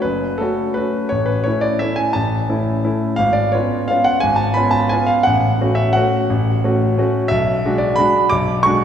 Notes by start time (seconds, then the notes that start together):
0.02 F#1 B4
0.38 A3 C#4 F#4 A4
0.74 A3 C#4 F#4 B4
1.09 A1 C#5
1.26 B4
1.44 A3 C#4 E4 C#5
1.61 D5
1.79 A3 C#4 E4 E5
1.96 G#5
2.13 A1 A5
2.49 A3 C#4 E4
2.84 A3 C#4 E4
3.16 G#1 F5
3.33 D5
3.52 B3 C#4 F4 C#5
3.88 B3 C#4 F4 F5
4.04 F#5
4.20 G#1 G#5
4.36 A5
4.54 B3 C#4 F4 B5
4.71 A5
4.89 B3 C#4 F4 G#5
5.07 F5
5.23 A1 F#5
5.61 A3 C#4 F#4
5.75 E5
5.93 A3 C#4 F#4 F#5
6.30 A1
6.64 A3 C#4 F#4
6.98 A3 C#4 F#4
7.28 B1 E5
7.65 G#3 D4 F#4
7.78 D5
7.96 G#3 D4 F#4 B5
8.29 B1 D6
8.63 G#3 D4 F#4 C#6